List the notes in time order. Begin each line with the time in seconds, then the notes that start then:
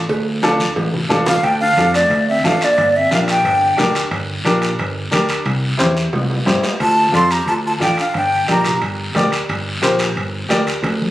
0.09 D2, cowbell, long guiro
0.43 D4 F4 A4, high conga, high timbale, short guiro
0.60 high conga, short guiro
0.76 A1, cowbell, low timbale, long guiro
0.94 low conga
1.09 A1 D4 F4 A4, low conga, low timbale, short guiro
1.26 D4 F5, low conga, low timbale, short guiro
1.43 D2 D4 G5, high conga, high timbale, long guiro
1.60 D4 F5
1.77 F2 D4 F4 A4, high conga, high timbale, short guiro
1.94 A3 D5, high timbale, short guiro
2.10 D2, high conga, high timbale, long guiro
2.29 C4 E5
2.44 A1 D4 F4 A4 F5, high conga, high timbale, low timbale, short guiro
2.61 A#3 D5, high timbale, short guiro
2.78 G1, high conga, high timbale, long guiro
2.96 C4 E5
3.11 A#1 D4 G4 A#4 F5, high conga, high timbale, short guiro
3.28 D4 G5, high timbale, short guiro
3.44 G1, high conga, high timbale, long guiro
3.77 D2 D4 G4 A#4, high conga, low conga, high timbale, low timbale, short guiro
3.95 high timbale, short guiro
4.11 G1, high conga, high timbale, long guiro
4.44 A#1 D4 G4 A#4, high conga, high timbale, short guiro
4.62 high timbale, short guiro
4.79 G1, high conga, high timbale, long guiro
5.11 D2 D4 G4 A#4, high conga, high timbale, short guiro
5.29 high timbale, short guiro
5.45 C2, high conga, high timbale, long guiro
5.78 E2 E4 G4 C5, high conga, high timbale, short guiro
5.97 short guiro
6.13 C2, low timbale, long guiro
6.30 low timbale
6.46 G2 E4 G4 C5, high conga, low conga, low timbale, short guiro
6.63 low timbale, short guiro
6.80 D2 F4 A5, high conga, high timbale, long guiro
7.12 F2 F4 A4 D5 C6, high conga, high timbale, short guiro
7.31 G4 A#5, high timbale, short guiro
7.46 D2 F4 A5, high conga, high timbale, long guiro
7.66 F4 A5
7.80 A1 D4 F4 A4 D5 G5, high conga, high timbale, short guiro
7.97 D4 F5, high timbale, short guiro
8.14 G1 D4 G5, high conga, high timbale, long guiro
8.47 A#1 G4 A#4 D5 A#5, high conga, high timbale, short guiro
8.64 low conga, high timbale, short guiro
8.82 G1, high conga, high timbale, long guiro
9.15 D2 G4 A#4 D5, high conga, low conga, high timbale, low timbale, short guiro
9.32 high timbale, short guiro
9.49 G1, high conga, high timbale, long guiro
9.82 A#1 G4 A#4 C5, high conga, high timbale, short guiro
9.99 high timbale, short guiro
10.16 G1, high conga, high timbale, long guiro
10.49 D2 G4 A#4 D5, high conga, high timbale, low timbale, short guiro
10.67 high timbale, short guiro
10.83 D2, high conga, high timbale, long guiro
11.02 high conga